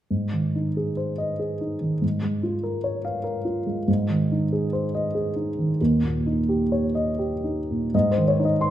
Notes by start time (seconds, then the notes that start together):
0.11 G#2
0.33 D#3
0.55 D#4
0.77 G#4
0.97 C5
1.18 D#5
1.39 G#4
1.61 D#4
1.81 D#3
2.02 G#2
2.22 G#3
2.43 F4
2.63 A#4
2.84 C#5
3.05 F5
3.24 A#4
3.45 F4
3.66 G#3
3.88 G#2
4.10 D#3
4.32 D#4
4.53 G#4
4.73 C5
4.95 D#5
5.15 G#4
5.36 D#4
5.58 D#3
5.81 D#2
6.03 A#2
6.26 D#4
6.49 G4
6.72 C#5
6.95 D#5
7.19 G4
7.44 D#4
7.70 A#2
7.94 G#2 D#5
8.11 C5
8.18 D#3
8.28 C#5
8.39 D#4
8.45 D#5
8.61 C6